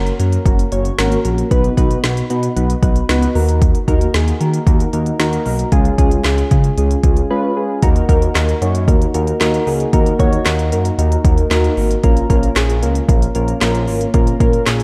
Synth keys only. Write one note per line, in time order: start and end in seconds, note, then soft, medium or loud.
0.00 0.14 A#3 medium
0.00 0.14 C#4 medium
0.00 0.14 F#4 medium
0.00 0.14 A#4 medium
0.19 0.41 A#3 medium
0.19 0.40 C#4 medium
0.19 0.40 F#4 medium
0.19 0.41 A#4 medium
0.46 0.67 A#3 medium
0.46 0.67 C#4 medium
0.46 0.67 F#4 medium
0.46 0.67 A#4 medium
0.72 0.93 A#3 medium
0.72 0.93 C#4 medium
0.72 0.93 F#4 medium
0.72 0.93 C#5 loud
0.99 1.20 A#3 loud
0.99 1.20 C#4 loud
0.99 1.20 F#4 loud
0.99 1.20 A#4 loud
1.25 1.46 A#3 medium
1.25 1.46 C#4 medium
1.25 1.46 F#4 medium
1.25 1.46 A#4 medium
1.51 1.72 B3 loud
1.51 1.72 D#4 loud
1.51 1.72 F#4 loud
1.51 1.72 B4 loud
1.77 1.98 B3 loud
1.77 1.98 D#4 loud
1.77 1.98 F#4 loud
1.77 1.98 B4 loud
2.04 2.25 B3 medium
2.04 2.25 D#4 medium
2.04 2.25 F#4 medium
2.04 2.25 B4 medium
2.30 2.51 B3 medium
2.30 2.51 D#4 medium
2.30 2.51 F#4 medium
2.30 2.51 B4 medium
2.56 2.77 B3 medium
2.56 2.77 D#4 medium
2.56 2.77 F#4 medium
2.56 2.77 B4 medium
2.82 3.04 B3 medium
2.82 3.04 D#4 medium
2.82 3.04 F#4 medium
2.82 3.04 B4 loud
3.09 3.30 B3 loud
3.09 3.30 D#4 loud
3.09 3.30 F#4 loud
3.09 3.30 B4 loud
3.35 3.77 A#3 medium
3.35 3.77 D#4 medium
3.35 3.77 F#4 medium
3.35 3.77 A#4 loud
3.88 4.09 A#3 loud
3.88 4.09 D#4 loud
3.88 4.09 F#4 loud
3.88 4.09 A#4 loud
4.14 4.35 A#3 medium
4.14 4.35 D#4 medium
4.14 4.35 F#4 medium
4.14 4.35 G#4 medium
4.41 4.62 A#3 medium
4.41 4.62 D#4 medium
4.41 4.62 F#4 medium
4.41 4.62 A#4 medium
4.67 4.88 A#3 medium
4.67 4.88 D#4 medium
4.67 4.88 F#4 medium
4.67 4.88 A#4 medium
4.93 5.14 A#3 medium
4.93 5.14 D#4 medium
4.93 5.14 F#4 medium
4.93 5.14 A#4 loud
5.20 5.41 A#3 loud
5.20 5.41 D#4 loud
5.20 5.41 F#4 loud
5.20 5.41 A#4 loud
5.46 5.67 A#3 medium
5.46 5.67 D#4 medium
5.46 5.67 F#4 medium
5.46 5.67 A#4 medium
5.72 5.93 G#3 loud
5.72 5.93 C#4 loud
5.72 5.93 F4 loud
5.72 5.93 G#4 loud
5.98 6.19 G#3 loud
5.98 6.19 C#4 loud
5.98 6.20 F4 loud
5.98 6.19 G#4 loud
6.25 6.46 G#3 medium
6.25 6.46 C#4 medium
6.25 6.46 F4 medium
6.25 6.46 G#4 medium
6.51 6.72 G#3 medium
6.51 6.72 C#4 medium
6.51 6.72 F4 medium
6.51 6.72 G#4 medium
6.78 6.99 G#3 medium
6.78 6.99 C#4 medium
6.78 6.99 F4 medium
6.78 6.99 G#4 medium
7.04 7.25 G#3 medium
7.04 7.25 C#4 medium
7.04 7.25 F4 medium
7.04 7.25 G#4 medium
7.30 7.51 G#3 loud
7.30 7.51 C#4 loud
7.30 7.51 F4 loud
7.30 7.51 B4 loud
7.57 7.78 G#3 medium
7.57 7.78 C#4 medium
7.57 7.78 F4 medium
7.57 7.78 G#4 medium
7.83 8.04 A#3 loud
7.83 8.04 D#4 loud
7.83 8.04 F#4 loud
7.83 8.04 A#4 loud
8.09 8.30 A#3 loud
8.09 8.30 D#4 loud
8.09 8.30 F#4 loud
8.09 8.30 A#4 loud
8.36 8.57 A#3 medium
8.36 8.57 D#4 medium
8.36 8.57 F#4 medium
8.36 8.57 A#4 medium
8.62 8.83 A#3 medium
8.62 8.83 D#4 medium
8.62 8.83 F#4 medium
8.62 8.83 C#5 medium
8.88 9.09 A#3 medium
8.88 9.09 D#4 medium
8.88 9.09 F#4 medium
8.88 9.09 A#4 loud
9.14 9.35 A#3 medium
9.14 9.35 D#4 medium
9.14 9.35 F#4 medium
9.14 9.35 A#4 loud
9.41 9.62 A#3 loud
9.41 9.62 D#4 loud
9.41 9.62 F#4 loud
9.41 9.62 A#4 loud
9.67 9.88 A#3 medium
9.67 9.88 D#4 medium
9.67 9.88 F#4 medium
9.67 9.88 G#4 loud
9.93 10.14 A#3 loud
9.93 10.14 D#4 loud
9.93 10.14 F#4 loud
9.93 10.14 A#4 loud
10.20 10.41 A#3 loud
10.20 10.41 D#4 loud
10.20 10.41 F#4 loud
10.20 10.41 C#5 loud
10.46 10.67 A#3 medium
10.46 10.67 D#4 medium
10.46 10.67 F#4 medium
10.46 10.67 A#4 medium
10.72 10.93 A#3 medium
10.72 10.93 D#4 medium
10.72 10.93 F#4 medium
10.72 10.93 A#4 medium
10.99 11.20 A#3 medium
10.99 11.20 D#4 medium
10.99 11.20 F#4 medium
10.99 11.20 A#4 loud
11.25 11.46 A#3 medium
11.25 11.46 D#4 medium
11.25 11.46 F#4 medium
11.25 11.46 A#4 loud
11.51 11.72 A#3 loud
11.51 11.72 D#4 loud
11.51 11.72 F#4 loud
11.51 11.72 A#4 loud
11.77 11.98 A#3 medium
11.77 11.98 D#4 medium
11.77 11.98 F#4 medium
11.77 11.98 A#4 loud
12.04 12.25 A#3 loud
12.04 12.25 C#4 loud
12.04 12.25 F4 loud
12.04 12.25 A#4 loud
12.30 12.51 A#3 loud
12.30 12.51 C#4 loud
12.30 12.51 F4 loud
12.30 12.51 A#4 loud
12.56 12.77 A#3 medium
12.56 12.77 C#4 medium
12.56 12.77 F4 medium
12.56 12.77 G#4 loud
12.83 13.04 A#3 medium
12.83 13.04 C#4 medium
12.83 13.04 F4 medium
12.83 13.04 A#4 medium
13.09 13.30 A#3 medium
13.09 13.30 C#4 medium
13.09 13.30 F4 medium
13.09 13.30 A#4 loud
13.35 13.56 A#3 medium
13.35 13.56 C#4 medium
13.35 13.56 F4 medium
13.35 13.56 A#4 loud
13.61 13.83 A#3 loud
13.61 13.83 C#4 loud
13.61 13.83 F4 loud
13.61 13.83 A#4 loud
13.88 14.09 A#3 medium
13.88 14.09 C#4 medium
13.88 14.09 F4 medium
13.88 14.09 A#4 medium
14.14 14.35 A#3 loud
14.14 14.35 C#4 loud
14.14 14.35 F4 loud
14.14 14.35 A#4 loud
14.41 14.62 A#3 loud
14.41 14.62 C#4 loud
14.41 14.62 F4 loud
14.41 14.62 A#4 loud
14.67 14.83 A#3 medium
14.67 14.83 C#4 medium
14.67 14.83 F4 medium
14.67 14.83 G#4 medium